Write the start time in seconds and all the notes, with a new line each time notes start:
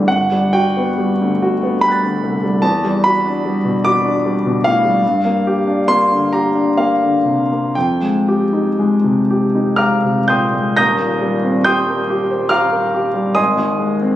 0.08 G1 F#5
0.32 G3
0.53 F#4 G5
0.77 B3
0.98 G3
1.22 D2
1.42 F#4
1.63 B3
1.81 G3 G5 B5
1.89 F#6 A6
2.03 D2
2.24 C2
2.43 G3
2.62 E2 A5
2.84 G3
3.04 F#4 B5
3.26 D4
3.45 G3
3.65 B2
3.85 F#4 D6
4.04 D4
4.26 G3
4.46 B2
4.64 A2 F5
4.85 G3
5.07 G2
5.25 A#3
5.47 G4
5.67 D4
5.88 A#3 C6
6.12 D3
6.33 G4 A#5
6.55 D4
6.77 A#3 F5
7.02 D3
7.25 C3
7.51 A#3
7.75 F2 G5
8.02 G#3
8.28 G4
8.53 D#4
8.79 G#3
9.04 C3
9.31 G4
9.55 D#4
9.76 G#3 F5 A#5 D6 F6
10.04 C3
10.28 A#2 G5 C6 D#6 G6
10.54 G#3
10.77 D#1 D#2 A#5 D#6 G6 A#6
11.00 A#2
11.22 G3
11.43 C4
11.64 G4 G5 C6 D#6 G6
11.88 A#4
12.10 G4
12.31 C5
12.49 G4 F5 A#5 D6 F6
12.72 A#4
12.94 G4
13.14 G3
13.35 G#1 D#5 G#5 C6 D#6
13.57 D#2
13.79 G#3
14.01 C4